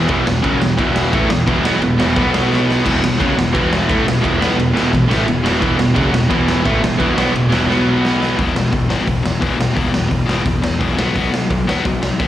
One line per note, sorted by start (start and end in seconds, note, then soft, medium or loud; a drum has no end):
0.08 0.24 E1 loud
0.08 0.25 E2 medium
0.08 0.26 B2 medium
0.08 0.26 E3 medium
0.08 kick loud
0.08 ride medium
0.25 0.41 E1 medium
0.25 0.40 E2 medium
0.25 0.40 B2 medium
0.25 snare loud
0.42 0.59 F#1 loud
0.42 0.59 F#2 medium
0.42 0.60 C#3 loud
0.42 0.60 F#3 loud
0.42 kick loud
0.42 ride medium
0.60 0.76 E1 medium
0.60 0.74 E2 medium
0.60 0.74 B2 medium
0.60 snare loud
0.78 1.10 E1 loud
0.78 1.12 E2 loud
0.78 1.12 B2 loud
0.78 1.12 E3 loud
0.78 kick loud
0.78 ride medium
0.96 snare loud
1.13 1.29 A1 medium
1.13 1.28 A2 loud
1.13 1.29 E3 medium
1.13 1.30 A3 loud
1.13 kick loud
1.13 ride medium
1.29 1.45 E1 medium
1.29 1.43 E2 medium
1.29 1.43 B2 medium
1.29 snare loud
1.47 1.62 E1 loud
1.47 1.63 E2 medium
1.47 1.64 B2 medium
1.47 1.64 E3 loud
1.47 kick loud
1.47 ride medium
1.63 1.79 B1 medium
1.63 1.81 B2 loud
1.63 1.81 F#3 loud
1.63 1.82 B3 loud
1.63 snare loud
1.81 1.97 E1 medium
1.81 1.95 E2 medium
1.81 1.96 B2 medium
1.81 ride medium
1.98 2.14 E1 medium
1.98 2.15 E2 medium
1.98 2.14 B2 medium
1.98 2.16 E3 medium
1.98 snare loud
2.16 2.81 B1 loud
2.16 2.84 B2 loud
2.16 2.84 F#3 loud
2.16 2.85 B3 loud
2.16 kick loud
2.16 ride medium
2.34 snare loud
2.53 snare medium
2.70 snare loud
2.84 3.01 E1 loud
2.84 3.01 E2 medium
2.84 3.01 B2 medium
2.84 3.02 E3 medium
2.84 kick loud
2.84 crash loud
3.02 3.18 E1 medium
3.02 3.16 E2 medium
3.02 3.16 B2 medium
3.02 snare loud
3.19 3.36 F#1 loud
3.19 3.35 F#2 medium
3.19 3.36 C#3 medium
3.19 3.37 F#3 loud
3.19 kick loud
3.19 ride medium
3.35 3.52 E1 medium
3.35 3.50 E2 medium
3.35 3.50 B2 medium
3.35 snare loud
3.53 3.87 E1 loud
3.53 3.87 E2 loud
3.53 3.88 B2 loud
3.53 3.88 E3 loud
3.53 kick loud
3.53 ride medium
3.73 snare loud
3.88 4.04 A1 medium
3.88 4.05 A2 medium
3.88 4.05 E3 medium
3.88 4.06 A3 loud
3.88 kick loud
3.88 ride medium
4.05 4.21 E1 medium
4.05 4.19 E2 medium
4.05 4.20 B2 medium
4.05 snare loud
4.21 4.39 E1 loud
4.21 4.39 E2 medium
4.21 4.38 B2 medium
4.21 4.39 E3 loud
4.21 kick loud
4.21 ride medium
4.39 4.56 B1 medium
4.39 4.56 B2 loud
4.39 4.57 F#3 medium
4.39 4.57 B3 loud
4.39 snare loud
4.57 4.74 E1 medium
4.57 4.71 E2 medium
4.57 4.71 B2 medium
4.57 ride medium
4.73 4.91 E1 medium
4.73 4.91 E2 loud
4.73 4.91 B2 loud
4.73 4.91 E3 loud
4.73 snare loud
4.92 5.08 E1 medium
4.92 5.06 E2 medium
4.92 5.06 B2 medium
4.92 kick loud
4.92 ride medium
5.09 5.25 A1 loud
5.09 5.25 A2 loud
5.09 5.26 E3 medium
5.09 5.27 A3 medium
5.09 snare loud
5.25 5.43 E1 medium
5.25 5.40 E2 medium
5.25 5.40 B2 medium
5.25 ride medium
5.43 5.60 E1 medium
5.43 5.60 E2 medium
5.43 5.60 B2 medium
5.43 5.60 E3 medium
5.43 snare loud
5.61 5.77 E1 medium
5.61 5.77 E2 medium
5.61 5.78 B2 loud
5.61 5.78 E3 medium
5.61 kick loud
5.61 ride medium
5.77 5.94 E1 medium
5.77 5.92 E2 medium
5.77 5.93 B2 medium
5.77 snare loud
5.95 6.11 F#1 loud
5.95 6.12 F#2 medium
5.95 6.12 C#3 loud
5.95 6.12 F#3 loud
5.95 kick loud
5.95 ride medium
6.12 6.28 E1 medium
6.12 6.27 E2 medium
6.12 6.27 B2 medium
6.12 snare loud
6.29 6.62 E1 medium
6.29 6.64 E2 medium
6.29 6.64 B2 loud
6.29 6.64 E3 loud
6.29 kick loud
6.29 ride medium
6.48 snare loud
6.64 6.80 A1 medium
6.64 6.81 A2 medium
6.64 6.81 E3 loud
6.64 6.82 A3 loud
6.64 kick loud
6.64 ride medium
6.81 6.97 E1 medium
6.81 6.95 E2 medium
6.81 6.96 B2 medium
6.81 snare loud
6.99 7.14 E1 loud
6.99 7.16 E2 medium
6.99 7.15 B2 medium
6.99 7.16 E3 loud
6.99 kick loud
6.99 ride medium
7.15 7.32 B1 medium
7.15 7.32 B2 medium
7.15 7.34 F#3 loud
7.15 7.34 B3 loud
7.15 snare loud
7.32 7.49 E1 medium
7.32 7.47 E2 medium
7.32 7.47 B2 medium
7.32 ride medium
7.50 7.66 E1 loud
7.50 7.67 E2 medium
7.50 7.65 B2 loud
7.50 7.67 E3 medium
7.50 snare loud
7.66 8.33 B1 loud
7.66 8.36 B2 loud
7.66 8.37 F#3 loud
7.66 8.37 B3 loud
7.70 snare medium
8.05 snare loud
8.22 snare medium
8.36 8.51 E1 medium
8.36 8.53 E2 medium
8.36 8.54 B2 loud
8.36 8.54 E3 loud
8.36 kick loud
8.36 open hi-hat medium
8.55 8.68 E1 medium
8.55 8.70 E2 medium
8.55 8.71 B2 medium
8.55 snare loud
8.72 8.86 E1 loud
8.72 8.87 E2 medium
8.72 8.88 B2 medium
8.72 kick loud
8.72 open hi-hat soft
8.88 9.02 G#1 medium
8.88 9.03 E2 medium
8.88 9.05 B2 medium
8.88 9.06 E3 medium
8.88 snare loud
9.05 9.33 E1 medium
9.05 9.21 E2 medium
9.05 9.22 B2 medium
9.05 kick loud
9.05 open hi-hat medium
9.23 9.39 E2 medium
9.23 9.39 B2 medium
9.23 snare loud
9.40 9.55 B1 medium
9.40 9.56 E2 medium
9.40 9.57 B2 medium
9.40 9.58 E3 loud
9.40 kick loud
9.40 open hi-hat medium
9.57 9.71 E1 medium
9.57 9.71 E2 medium
9.57 9.72 B2 medium
9.57 snare loud
9.73 9.89 E2 medium
9.73 9.90 B2 medium
9.73 9.91 E3 medium
9.77 9.90 E1 loud
9.77 kick loud
9.77 open hi-hat medium
9.90 10.06 E1 medium
9.90 10.07 E2 medium
9.90 10.07 B2 medium
9.90 snare loud
10.08 10.24 E1 loud
10.08 10.24 E2 medium
10.08 10.25 B2 medium
10.08 kick medium
10.08 open hi-hat medium
10.26 10.41 G#1 medium
10.26 10.43 E2 medium
10.26 10.44 B2 medium
10.26 10.43 E3 medium
10.26 snare loud
10.44 10.72 E1 medium
10.44 10.60 E2 medium
10.44 10.61 B2 medium
10.44 kick loud
10.44 open hi-hat medium
10.62 10.78 E2 medium
10.62 10.78 B2 medium
10.62 snare loud
10.79 10.96 B1 medium
10.79 10.96 E2 medium
10.79 10.96 B2 medium
10.79 10.97 E3 medium
10.79 kick loud
10.79 open hi-hat medium
10.96 11.10 B1 medium
10.96 11.13 B2 medium
10.96 11.14 F#3 medium
10.96 11.14 B3 loud
10.96 snare loud
11.16 11.28 B1 medium
11.16 11.31 B2 medium
11.16 11.31 F#3 medium
11.16 11.32 B3 medium
11.16 kick loud
11.16 open hi-hat medium
11.31 11.44 B1 medium
11.31 11.48 B2 medium
11.31 11.49 F#3 medium
11.31 snare loud
11.50 11.63 B1 loud
11.50 11.65 B2 medium
11.50 11.66 F#3 medium
11.50 kick loud
11.50 open hi-hat medium
11.66 11.79 D#2 medium
11.66 11.83 B2 medium
11.66 11.83 F#3 medium
11.66 11.84 B3 medium
11.66 snare loud
11.85 12.11 B1 loud
11.85 12.00 B2 medium
11.85 12.00 F#3 medium
11.85 kick loud
11.85 open hi-hat medium
12.02 12.17 B2 medium
12.02 12.17 F#3 medium
12.02 snare loud
12.19 12.28 D#2 medium
12.19 12.28 B2 medium
12.19 12.28 F#3 medium
12.19 12.28 B3 medium
12.19 kick loud
12.19 open hi-hat medium